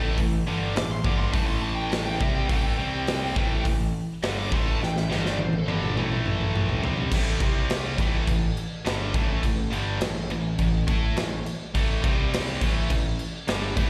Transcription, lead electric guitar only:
0.00 0.17 A4 loud
0.78 0.91 D6 loud
0.91 1.04 C6 medium
1.04 1.18 D6 medium
1.18 1.33 C6 medium
1.33 1.46 A5 medium
1.47 1.62 C6 loud
1.62 1.75 A5 loud
1.75 1.90 G5 loud
1.90 2.05 A5 medium
2.05 2.21 G5 medium
2.21 2.35 E5 medium
2.35 2.49 G5 medium
2.51 3.63 G5 loud
4.39 4.53 D6 loud
4.54 4.67 C6 medium
4.68 4.84 A5 loud
4.84 4.97 G5 loud
4.97 5.10 E5 medium
5.12 5.28 D#5 loud
5.28 5.42 D5 medium
5.42 5.57 C5 loud
5.57 5.70 A4 loud
5.73 5.99 A4 loud

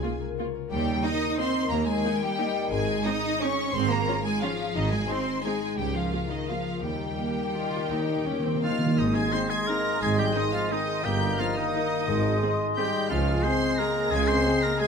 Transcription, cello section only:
0.00 0.21 G#3 medium
0.71 1.01 G3 medium
1.03 1.38 D#4 medium
1.38 1.70 C4 medium
1.70 1.86 A#3 medium
1.86 2.21 G#3 medium
2.21 2.71 G3 medium
2.71 3.05 G#3 medium
3.05 3.41 D#4 medium
3.41 3.74 C#4 medium
3.74 3.90 C4 loud
3.90 4.25 A#3 medium
4.24 4.42 G#3 medium
4.42 4.75 F3 medium
4.75 4.92 D#3 medium
4.92 5.09 G#3 medium
5.09 5.44 C4 medium
5.44 5.77 G#3 medium
5.77 5.94 G3 medium
5.93 6.29 F3 medium
6.29 6.48 D#3 medium
6.47 6.82 F3 medium
6.82 8.81 G3 medium
8.97 9.26 G#2 medium
10.01 10.29 G#2 medium
11.04 11.33 G2 medium
12.08 12.36 G#2 medium
13.10 13.38 C#3 medium
14.12 14.39 C#3 medium

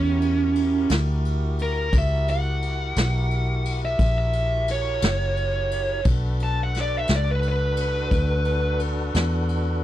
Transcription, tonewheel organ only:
0.00 1.89 E4 medium
0.00 1.89 F#4 medium
0.00 1.89 G4 medium
0.00 1.90 A#4 medium
1.92 6.01 E4 medium
1.92 6.01 F#4 medium
1.92 6.01 G4 medium
1.92 6.01 A#4 medium
6.07 9.84 D4 medium
6.07 9.84 F#4 medium
6.07 9.84 A4 medium
6.07 9.84 B4 medium

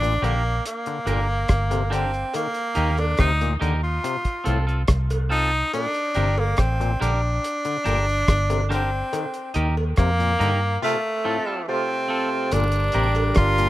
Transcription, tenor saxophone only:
0.00 0.26 D4 loud
0.24 0.66 A#3 medium
0.67 1.89 A#3 medium
1.94 2.32 C4 medium
2.36 3.01 A#3 medium
3.00 3.19 D4 medium
3.19 3.53 D#4 loud
3.84 4.64 F4 medium
5.31 5.71 D#4 loud
5.74 6.40 D4 loud
6.39 6.61 A#3 medium
6.59 7.01 C4 medium
7.02 8.67 D4 loud
8.73 9.53 C4 medium
9.98 10.78 A#3 loud
10.83 11.64 A3 medium
11.68 12.55 C4 medium
12.53 13.37 D4 loud
13.37 13.69 F4 loud

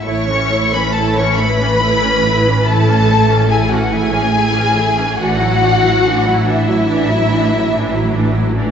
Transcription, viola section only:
0.05 0.26 A3 medium
0.05 0.26 E4 medium
0.29 0.51 E3 medium
0.29 0.51 C#4 medium
0.51 0.72 A3 medium
0.51 0.72 E4 medium
0.73 0.94 E3 medium
0.73 0.94 C#4 medium
0.96 1.15 A3 medium
0.96 1.15 E4 medium
1.17 1.38 E3 medium
1.17 1.38 C#4 medium
1.38 1.59 A3 medium
1.38 1.59 E4 medium
1.60 1.81 E3 medium
1.60 1.81 C#4 medium
1.80 2.01 A3 medium
1.80 2.00 E4 medium
2.03 2.24 E3 medium
2.03 2.24 C#4 medium
2.25 2.46 A3 medium
2.25 2.46 E4 medium
2.46 2.67 E3 medium
2.46 2.67 C#4 medium
2.68 2.86 A3 medium
2.68 2.86 E4 medium
2.87 3.08 E3 medium
2.87 3.08 C#4 medium
3.08 3.29 A3 medium
3.08 3.29 E4 medium
3.29 3.49 E3 medium
3.29 3.49 C#4 medium
3.49 3.68 A3 medium
3.49 3.68 E4 medium
3.70 3.91 E3 medium
3.70 3.91 C#4 medium
3.92 4.12 A3 medium
3.92 4.12 E4 medium
4.12 4.33 E3 medium
4.12 4.32 C#4 medium
4.33 4.52 A3 medium
4.33 4.53 E4 medium
4.54 4.75 E3 medium
4.54 4.76 C#4 medium
4.75 4.97 A3 medium
4.75 4.97 E4 medium
4.96 5.17 E3 medium
4.96 5.18 C#4 medium
5.18 5.39 E3 medium
5.18 5.39 D4 medium
5.40 5.62 F#3 medium
5.40 5.62 E4 medium
5.62 5.84 E3 medium
5.62 5.83 D4 medium
5.83 6.05 F#3 medium
5.83 6.05 E4 medium
6.04 6.24 E3 medium
6.04 6.24 D4 medium
6.25 6.47 F#3 medium
6.25 6.47 E4 medium
6.46 6.68 E3 medium
6.46 6.68 D4 medium
6.67 6.89 F#3 medium
6.67 6.89 E4 medium
6.88 7.08 E3 medium
6.88 7.08 D4 medium
7.09 7.30 F#3 medium
7.09 7.31 E4 medium
7.31 7.52 E3 medium
7.31 7.52 D4 medium
7.52 7.73 F#3 medium
7.52 7.73 E4 medium
7.73 7.92 E3 medium
7.73 7.92 D4 medium
7.93 8.14 F#3 medium
7.93 8.14 E4 medium
8.14 8.35 E3 medium
8.14 8.35 D4 medium
8.35 8.57 F#3 medium
8.35 8.57 E4 medium
8.54 8.71 E3 medium
8.54 8.71 D4 medium

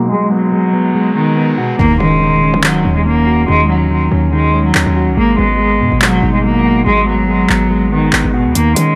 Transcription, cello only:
0.10 0.29 G#3 loud
0.32 1.12 F#3 medium
1.16 1.56 D#3 medium
1.58 1.77 B2 medium
1.79 1.98 A#3 loud
2.00 2.60 G#3 medium
2.64 2.94 F#3 medium
2.96 3.05 G#3 medium
3.06 3.46 A#3 medium
3.48 3.67 G#3 loud
3.69 4.29 F#3 medium
4.33 4.63 G#3 medium
4.65 5.14 F#3 medium
5.17 5.37 A#3 loud
5.39 5.98 G#3 medium
6.02 6.32 F#3 loud
6.34 6.43 G#3 medium
6.44 6.84 A#3 medium
6.86 7.05 G#3 loud
7.08 7.88 F#3 medium
7.92 8.32 D#3 medium
8.34 8.53 B2 medium
8.55 8.74 A#3 loud
8.76 8.95 G#3 medium

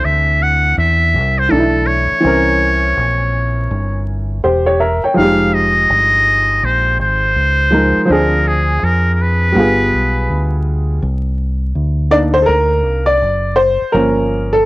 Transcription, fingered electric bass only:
0.05 0.74 D2 medium
0.78 1.16 E2 medium
1.14 1.49 C2 medium
1.52 2.08 B1 medium
2.24 2.93 C2 loud
2.97 3.66 A#1 medium
3.71 4.40 G1 loud
4.44 5.00 E1 medium
5.04 muted fingered electric bass stroke soft
5.17 5.86 F1 medium
5.90 6.59 G1 medium
6.63 6.97 A#1 loud
6.99 7.34 G#1 medium
7.36 7.93 C#2 medium
8.10 8.79 D2 loud
8.83 9.52 F2 medium
9.56 9.90 G1 loud
9.93 10.27 B1 medium
10.30 10.99 D2 medium
11.02 11.72 C2 medium
11.75 12.45 D2 medium
12.48 12.84 D2 medium
12.84 13.19 C2 medium
13.22 13.78 F#1 medium
13.82 muted fingered electric bass stroke soft
13.94 14.64 G1 medium

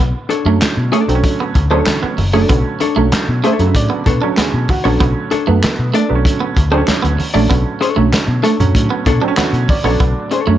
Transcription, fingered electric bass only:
0.00 0.12 B1 loud
0.45 0.58 F#2 loud
0.62 muted fingered electric bass stroke soft
0.77 0.90 B2 medium
1.08 1.21 B1 medium
1.55 1.81 D2 medium
2.03 muted fingered electric bass stroke soft
2.19 2.44 F#1 medium
2.50 2.62 B1 loud
2.97 3.09 B1 medium
3.13 muted fingered electric bass stroke soft
3.28 3.41 B2 loud
3.59 3.72 F#2 medium
3.75 3.87 A2 medium
4.06 4.19 B2 medium
4.54 4.66 B2 medium
4.85 4.97 A#1 medium
5.01 5.13 B1 medium
5.48 5.60 F#2 medium
5.64 muted fingered electric bass stroke soft
5.79 5.91 B2 medium
6.11 6.23 B1 medium
6.57 6.82 D2 medium
6.89 muted fingered electric bass stroke soft
7.04 7.16 D2 medium
7.35 7.48 A#1 loud
7.51 7.63 B1 medium
7.97 8.10 B1 medium
8.28 8.41 B2 medium
8.60 8.72 F#2 medium
8.75 8.88 A2 loud
9.06 9.19 B2 medium
9.53 9.66 B2 loud
9.84 9.97 A#1 medium
10.00 10.13 B1 medium
10.48 10.58 F#2 medium

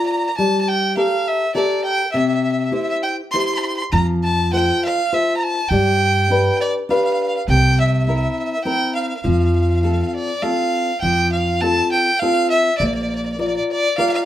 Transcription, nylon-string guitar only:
0.00 0.27 F4 soft
0.00 0.27 A#4 soft
0.00 0.28 D5 medium
0.38 0.95 G3 medium
0.97 1.44 G4 soft
0.97 1.44 A4 soft
0.97 1.44 A#4 medium
1.55 2.02 G4 medium
1.55 2.02 A4 soft
1.55 2.03 A#4 medium
2.14 2.71 C3 medium
2.71 3.20 E4 soft
2.71 3.20 G4 soft
2.71 3.20 C5 soft
3.34 3.81 E4 soft
3.34 3.81 G4 soft
3.34 3.82 C5 soft
3.93 4.50 F3 medium
4.53 5.00 F4 soft
4.53 5.00 A4 soft
4.53 5.00 C5 soft
5.12 5.60 F4 soft
5.12 5.60 A4 soft
5.12 5.59 C5 medium
5.71 6.28 G3 medium
6.30 6.77 D4 soft
6.30 6.77 G4 soft
6.30 6.78 B4 soft
6.89 7.36 D4 soft
6.89 7.37 G4 soft
6.89 7.37 B4 medium
7.49 8.05 C3 medium
8.07 8.54 C4 soft
8.07 8.54 E4 soft
8.07 8.55 A#4 soft
8.65 9.12 C4 medium
8.65 9.12 E4 soft
8.65 9.13 A#4 medium
9.24 9.81 F3 medium
9.83 10.30 C4 soft
9.83 10.30 F4 soft
9.83 10.31 A4 soft
10.42 10.90 C4 soft
10.42 10.90 F4 soft
10.42 10.90 A4 medium
11.03 11.60 F3 medium
11.61 12.09 C4 soft
11.61 12.10 F4 soft
11.61 12.10 A4 medium
12.22 12.69 C4 soft
12.22 12.69 F4 soft
12.22 12.69 A4 medium
12.81 13.37 A#3 medium
13.39 13.85 F4 soft
13.39 13.86 A#4 soft
13.39 13.86 D5 soft
13.98 14.25 F4 medium
13.98 14.25 A#4 medium
13.98 14.25 D5 medium

